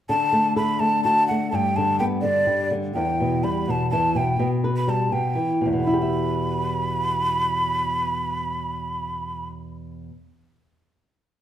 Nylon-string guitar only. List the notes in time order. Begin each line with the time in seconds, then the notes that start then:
0.09 D3
0.32 A3
0.56 A4
0.80 A3
1.05 F#4
1.31 A3
1.53 G2
1.77 D3
2.00 B3
2.23 D3
2.47 G3
2.71 D3
2.95 E2
3.20 B2
3.44 G3
3.68 B2
3.92 E3
4.15 B2
4.39 B2
4.64 B4
4.88 G3
5.12 B2
5.35 E3
5.61 B2
5.66 E2
5.73 B2
5.79 B3
5.87 E4
5.93 G4
6.01 E5